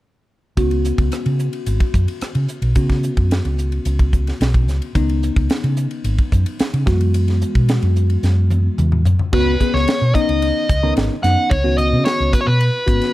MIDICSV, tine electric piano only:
0, 0, Header, 1, 2, 480
1, 0, Start_track
1, 0, Key_signature, 4, "minor"
1, 0, Tempo, 546448
1, 500, Time_signature, 4, 2, 24, 8
1, 11535, End_track
2, 0, Start_track
2, 0, Title_t, "Tine electric piano"
2, 0, Program_c, 0, 4
2, 500, Note_on_c, 0, 51, 56
2, 500, Note_on_c, 0, 61, 45
2, 503, Note_on_c, 0, 59, 45
2, 503, Note_on_c, 0, 66, 63
2, 2389, Note_off_c, 0, 61, 0
2, 2390, Note_off_c, 0, 51, 0
2, 2391, Note_off_c, 0, 59, 0
2, 2391, Note_off_c, 0, 66, 0
2, 2420, Note_on_c, 0, 66, 57
2, 2423, Note_on_c, 0, 51, 51
2, 2423, Note_on_c, 0, 59, 46
2, 2423, Note_on_c, 0, 61, 48
2, 4311, Note_off_c, 0, 66, 0
2, 4313, Note_off_c, 0, 51, 0
2, 4313, Note_off_c, 0, 59, 0
2, 4313, Note_off_c, 0, 61, 0
2, 4349, Note_on_c, 0, 59, 49
2, 4349, Note_on_c, 0, 61, 44
2, 4349, Note_on_c, 0, 63, 62
2, 4351, Note_on_c, 0, 51, 53
2, 5997, Note_off_c, 0, 59, 0
2, 5997, Note_off_c, 0, 61, 0
2, 5997, Note_off_c, 0, 63, 0
2, 5999, Note_off_c, 0, 51, 0
2, 6026, Note_on_c, 0, 56, 51
2, 6027, Note_on_c, 0, 52, 54
2, 6027, Note_on_c, 0, 66, 64
2, 6028, Note_on_c, 0, 59, 50
2, 7914, Note_off_c, 0, 52, 0
2, 7914, Note_off_c, 0, 56, 0
2, 7914, Note_off_c, 0, 66, 0
2, 7915, Note_off_c, 0, 59, 0
2, 8191, Note_on_c, 0, 51, 57
2, 8193, Note_on_c, 0, 59, 59
2, 8193, Note_on_c, 0, 66, 74
2, 8194, Note_on_c, 0, 61, 53
2, 8373, Note_off_c, 0, 51, 0
2, 8375, Note_off_c, 0, 59, 0
2, 8375, Note_off_c, 0, 61, 0
2, 8375, Note_off_c, 0, 66, 0
2, 8438, Note_on_c, 0, 51, 56
2, 8438, Note_on_c, 0, 59, 49
2, 8439, Note_on_c, 0, 61, 45
2, 8439, Note_on_c, 0, 68, 55
2, 8799, Note_off_c, 0, 51, 0
2, 8800, Note_off_c, 0, 59, 0
2, 8800, Note_off_c, 0, 61, 0
2, 8800, Note_off_c, 0, 68, 0
2, 8915, Note_on_c, 0, 61, 65
2, 8915, Note_on_c, 0, 63, 78
2, 8916, Note_on_c, 0, 51, 67
2, 8917, Note_on_c, 0, 59, 63
2, 9368, Note_off_c, 0, 61, 0
2, 9369, Note_off_c, 0, 51, 0
2, 9369, Note_off_c, 0, 59, 0
2, 9369, Note_off_c, 0, 63, 0
2, 9515, Note_on_c, 0, 51, 78
2, 9515, Note_on_c, 0, 63, 82
2, 9516, Note_on_c, 0, 59, 67
2, 9516, Note_on_c, 0, 61, 69
2, 9786, Note_off_c, 0, 51, 0
2, 9786, Note_off_c, 0, 59, 0
2, 9786, Note_off_c, 0, 61, 0
2, 9786, Note_off_c, 0, 63, 0
2, 9872, Note_on_c, 0, 51, 51
2, 9872, Note_on_c, 0, 59, 56
2, 9872, Note_on_c, 0, 61, 51
2, 9872, Note_on_c, 0, 63, 61
2, 10143, Note_off_c, 0, 61, 0
2, 10144, Note_off_c, 0, 51, 0
2, 10144, Note_off_c, 0, 59, 0
2, 10144, Note_off_c, 0, 63, 0
2, 10226, Note_on_c, 0, 51, 71
2, 10226, Note_on_c, 0, 61, 69
2, 10227, Note_on_c, 0, 59, 69
2, 10227, Note_on_c, 0, 66, 73
2, 10955, Note_off_c, 0, 51, 0
2, 10955, Note_off_c, 0, 61, 0
2, 10956, Note_off_c, 0, 59, 0
2, 10956, Note_off_c, 0, 66, 0
2, 11300, Note_on_c, 0, 66, 69
2, 11301, Note_on_c, 0, 51, 59
2, 11303, Note_on_c, 0, 59, 58
2, 11303, Note_on_c, 0, 61, 54
2, 11535, Note_off_c, 0, 51, 0
2, 11535, Note_off_c, 0, 59, 0
2, 11535, Note_off_c, 0, 61, 0
2, 11535, Note_off_c, 0, 66, 0
2, 11535, End_track
0, 0, End_of_file